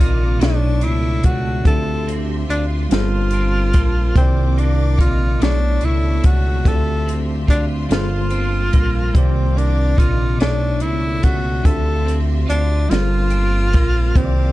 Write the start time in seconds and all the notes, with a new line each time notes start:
Already playing: C3 D#3 A#3 F4 A#4 D5 F5 D6
0.00 A#1 D#4 F4, closed hi-hat
0.38 B1 B2 A3 D4 E4 A4 E5 C#6, closed hi-hat
0.43 C#5, snare
0.81 C#2 D4 E4, closed hi-hat
1.23 C#2 A3 F#4, kick, closed hi-hat
1.63 D2 D3 C4 E4 F4 G4 A4 E5 C6, kick, closed hi-hat
1.68 E5
1.72 F4
2.07 C4, closed hi-hat
2.49 D2 D4 F4, closed hi-hat
2.89 G1 G2 G3 A#3 F4 A4 A#4 A5, snare, closed hi-hat
2.94 C5
3.31 C4, closed hi-hat
3.73 A#1 A#3, kick, closed hi-hat
4.14 C2 C3 D#3 A#3 C4 D5 D6, kick, closed hi-hat
4.18 F4 D5
4.57 A#3 D4, closed hi-hat
4.98 A#1 D#4 F4, kick, closed hi-hat
5.39 B1 B2 A3 D4 E5, closed hi-hat
5.43 E4 A4 C#5 C#6, snare
5.81 C#2 D4, closed hi-hat
5.85 E4
6.24 C#2 A3 F#4, kick, closed hi-hat
6.64 D2 D3 C4 F4 A4 C6, kick, closed hi-hat
6.68 F4 G4 D5
6.76 E5
7.06 C4, closed hi-hat
7.47 D2 D4 F4, kick, closed hi-hat
7.89 G1 G2 G3 A#3 F4 A4 A#4 A5, snare, closed hi-hat
7.94 C5
8.30 C4, closed hi-hat
8.72 A#1 A#3, kick, closed hi-hat
9.14 C2 C3 D#3 A#3 C4 F4 D5 D6, kick, closed hi-hat
9.18 D5
9.56 A#3 D4, closed hi-hat
9.97 A#1 D#4 F4, kick, closed hi-hat
10.38 B1 B2 A3 D4 E4 A4 E5 C#6, snare, closed hi-hat
10.43 C#5
10.80 C#2 D4 E4, closed hi-hat
11.22 C#2 A3 F#4, kick, closed hi-hat
11.63 D2 D3 C4 F4 G4 A4 C6, kick, closed hi-hat
11.68 E5
12.05 C4, closed hi-hat
12.46 D2 D4 F4, closed hi-hat
12.88 G1 G2 G3 A#3 F4 A4 F5 A5 C6, closed hi-hat
12.92 A#4 C5, snare
13.30 C4, closed hi-hat
13.72 A#1 A#3, kick, closed hi-hat
14.13 C2 C3 D#3 A#3 C4 F4 A#4 D5 D6, kick, closed hi-hat
14.18 C#5
14.25 D5